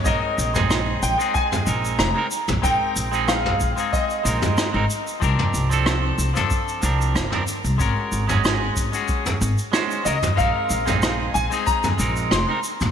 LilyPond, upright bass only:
\new Staff \with { instrumentName = "Upright bass" } { \clef bass \time 4/4 \key aes \lydian \tempo 4 = 93 bes,,16 r16 bes,,4 bes,,16 r8. bes,,8 f,,16 r8 bes,,16 | bes,,16 r16 bes,,4 bes,,16 r8. bes,,16 r8 aes,,16 r8 | c,16 r16 c,4 c,16 r8. c,8 g,,16 r8 c,16 | aes,,16 r16 aes,,4 aes,,16 r8. aes,,16 r8. des,16 r16 |
bes,,16 r16 bes,,4 bes,,16 r8. bes,,8 f,,16 r8 bes,,16 | }